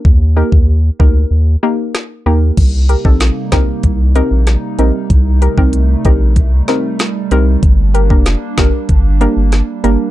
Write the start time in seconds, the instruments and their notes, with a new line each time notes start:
0.05 analog synth bass D#2, kick
0.36 synth pluck A#3 D#4 G4 A#4
0.52 analog synth bass D#2, kick
0.99 analog synth bass D2, synth pluck A#3 D#4 G4 A#4, kick
1.31 analog synth bass D#2
1.63 synth pluck A#3 D#4 G4 A#4
1.95 cross-stick, snare
2.26 analog synth bass D#2, synth pluck A#3 D#4 G4 A#4
2.57 analog synth bass C2, analog synth pad C3 G3 A#3 D#4, kick, closed hi-hat, crash
2.89 synth pluck G4 A#4, closed hi-hat
3.05 analog synth bass A#1, synth pluck C4 D#4 G4 A4, kick
3.20 snare, closed hi-hat
3.52 analog synth bass C2, synth pluck C4 D#4 G4 A#4, kick, snare, closed hi-hat
3.83 analog synth bass C2, kick, closed hi-hat
4.15 synth pluck C4 D#4 G4 A#4, closed hi-hat
4.31 analog synth bass A#1
4.47 cross-stick, snare, closed hi-hat
4.79 analog synth bass A#1, synth pluck C4 D#4 G4 A#4, closed hi-hat
5.10 analog synth bass C2, analog synth pad A3, kick, closed hi-hat
5.42 synth pluck G4 A#4, closed hi-hat
5.58 analog synth bass C2, synth pluck C4 D#4 G4 A#4, kick
5.73 closed hi-hat
6.05 analog synth bass A#1, synth pluck C4 D#4 G4 A#4, kick, closed hi-hat
6.36 analog synth bass C2, kick, closed hi-hat
6.68 synth pluck C4 D#4 G4 A#4, snare, closed hi-hat
6.99 cross-stick, snare, closed hi-hat
7.31 analog synth bass C2, synth pluck C4 D#4 G4 A#4, closed hi-hat
7.63 analog synth bass G1, analog synth pad A#3 D4, kick, closed hi-hat
7.94 synth pluck G4 A#4, closed hi-hat
8.10 analog synth bass F1, synth pluck A#3 D4 G4 A#4, kick
8.26 snare, closed hi-hat
8.57 analog synth bass G1, synth pluck A#3 D4 G4 A#4, kick, snare, closed hi-hat
8.89 analog synth bass G1, kick, closed hi-hat
9.21 synth pluck A#3 D4 G4 A#4, closed hi-hat
9.37 analog synth bass G1
9.52 cross-stick, snare, closed hi-hat
9.84 analog synth bass G1, synth pluck A#3 D4 G4 A#4, closed hi-hat